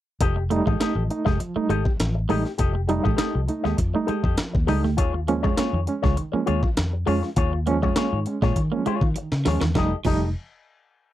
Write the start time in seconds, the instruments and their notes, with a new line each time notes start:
0.21 fingered electric bass F1, reed electric piano F3, clean electric guitar G4 A4 D#5, kick, closed hi-hat
0.37 muted clean electric guitar stroke
0.50 reed electric piano G3 A3 D#4, clean electric guitar A3, muted clean electric guitar stroke, closed hi-hat
0.66 fingered electric bass A1, clean electric guitar G#3 G4 A4 D#5, kick
0.80 clean electric guitar A3 G4 A4 D#5, reed electric piano A3 D#4, snare, closed hi-hat
0.95 fingered electric bass A1, reed electric piano F3, muted clean electric guitar stroke
1.10 reed electric piano A3 D#4, muted clean electric guitar stroke, closed hi-hat
1.25 fingered electric bass F1, clean electric guitar G#3 G4 A4 D#5, kick, snare
1.40 reed electric piano F3, muted clean electric guitar stroke, closed hi-hat
1.56 reed electric piano G3 A3 D#4, clean electric guitar A3, muted fingered electric bass stroke, muted clean electric guitar stroke
1.69 fingered electric bass G#1, clean electric guitar G#3 G4 A4 D#5, reed electric piano A3 D#4, closed hi-hat
1.85 muted clean electric guitar stroke, kick
2.00 fingered electric bass A1, reed electric piano F3, muted clean electric guitar stroke, snare, closed hi-hat
2.15 muted clean electric guitar stroke
2.29 fingered electric bass A1, reed electric piano G3 A3 D#4, clean electric guitar G#3 G4 A4 D#5, open hi-hat
2.45 reed electric piano A3 D#4, muted clean electric guitar stroke, snare
2.58 fingered electric bass F1, reed electric piano F3, clean electric guitar G4 A4 D#5, kick, closed hi-hat
2.73 muted clean electric guitar stroke
2.87 reed electric piano G3 A3 D#4, clean electric guitar A3, muted clean electric guitar stroke, closed hi-hat
3.03 fingered electric bass A1, clean electric guitar G#3 G4 A4 D#5, reed electric piano A3 D#4, kick
3.17 reed electric piano A3 D#4, clean electric guitar A3 G4 A4 D#5, muted fingered electric bass stroke, snare, closed hi-hat
3.35 fingered electric bass C2, reed electric piano F3, muted clean electric guitar stroke
3.48 reed electric piano A3 D#4, muted clean electric guitar stroke, closed hi-hat
3.64 fingered electric bass D#2, clean electric guitar G#3 G4 A4 D#5, snare
3.77 fingered electric bass F2, reed electric piano F3, muted clean electric guitar stroke, kick, closed hi-hat
3.94 reed electric piano G3 A3 D#4, clean electric guitar A3, muted clean electric guitar stroke
4.07 clean electric guitar G#3 G4 A4 D#5, reed electric piano A3 D#4, muted fingered electric bass stroke, closed hi-hat
4.23 fingered electric bass F2, clean electric guitar G4 A4 D#5, kick
4.37 reed electric piano F3, muted clean electric guitar stroke, snare, closed hi-hat
4.53 fingered electric bass D#2, muted clean electric guitar stroke, kick
4.67 fingered electric bass C#2, reed electric piano G3 A3 D#4, clean electric guitar G#3 G4 A4 D#5, open hi-hat
4.83 fingered electric bass D2, reed electric piano A3 D#4, clean electric guitar A3, muted clean electric guitar stroke, snare
4.97 fingered electric bass D#2, reed electric piano D#3, clean electric guitar F4 G#4 C#5, kick, closed hi-hat
5.13 muted clean electric guitar stroke
5.28 reed electric piano F3 G#3 C#4, clean electric guitar A#3, muted clean electric guitar stroke, closed hi-hat
5.43 fingered electric bass F2, clean electric guitar G#3 F4 G#4 C#5, reed electric piano G#3 C#4, kick
5.56 reed electric piano G#3 C#4, clean electric guitar A#3 F4 G#4 C#5, muted fingered electric bass stroke, snare, closed hi-hat
5.73 fingered electric bass F2, reed electric piano D#3, muted clean electric guitar stroke
5.87 reed electric piano G#3 C#4, muted clean electric guitar stroke, closed hi-hat
6.02 fingered electric bass C#2, clean electric guitar G#3 F4 G#4 C#5, kick, snare
6.17 reed electric piano D#3, muted clean electric guitar stroke, closed hi-hat
6.32 reed electric piano F3 G#3 C#4, clean electric guitar A#3, muted clean electric guitar stroke, muted fingered electric bass stroke
6.46 fingered electric bass D#2, clean electric guitar G#3 F4 G#4 C#5, reed electric piano G#3 C#4, closed hi-hat
6.63 muted clean electric guitar stroke, kick
6.77 fingered electric bass F2, reed electric piano D#3, muted clean electric guitar stroke, snare, closed hi-hat
6.93 muted clean electric guitar stroke
7.06 fingered electric bass F2, reed electric piano F3 G#3 C#4, clean electric guitar G#3 F4 G#4 C#5, open hi-hat
7.23 reed electric piano G#3 C#4, muted clean electric guitar stroke, snare
7.36 fingered electric bass D#2, reed electric piano D#3, clean electric guitar F4 G#4 C#5, kick, closed hi-hat
7.53 muted clean electric guitar stroke
7.66 reed electric piano F3 G#3 C#4, clean electric guitar A#3, muted clean electric guitar stroke, closed hi-hat
7.82 fingered electric bass F2, clean electric guitar G#3 F4 G#4 C#5, reed electric piano G#3 C#4, kick
7.96 reed electric piano G#3 C#4, clean electric guitar A#3 F4 G#4 C#5, muted fingered electric bass stroke, snare, closed hi-hat
8.13 fingered electric bass G#2, reed electric piano D#3, muted clean electric guitar stroke
8.26 reed electric piano G#3 C#4, muted clean electric guitar stroke, closed hi-hat
8.42 fingered electric bass A#2, clean electric guitar G#3 F4 G#4 C#5, kick, snare
8.56 fingered electric bass D#3, reed electric piano D#3, muted clean electric guitar stroke, kick, closed hi-hat
8.72 reed electric piano F3 G#3 C#4, clean electric guitar A#3, muted clean electric guitar stroke
8.86 clean electric guitar G#3 F4 G#4 C#5, muted fingered electric bass stroke, closed hi-hat
9.01 fingered electric bass D#3, muted clean electric guitar stroke, kick
9.16 reed electric piano D#3, muted clean electric guitar stroke, closed hi-hat
9.32 fingered electric bass C#3, snare
9.45 fingered electric bass D#2, clean electric guitar F3 F4 G#4 C#5, reed electric piano F3 G#3 C#4, snare, open hi-hat
9.61 fingered electric bass E2, clean electric guitar D#3, muted clean electric guitar stroke, snare
9.75 fingered electric bass F1, clean electric guitar F3 G4 A4 D#5, reed electric piano G3 A3 D#4, kick, snare
10.05 fingered electric bass F1, clean electric guitar F3 G4 A4 D#5, reed electric piano G3 A3 D#4, kick, crash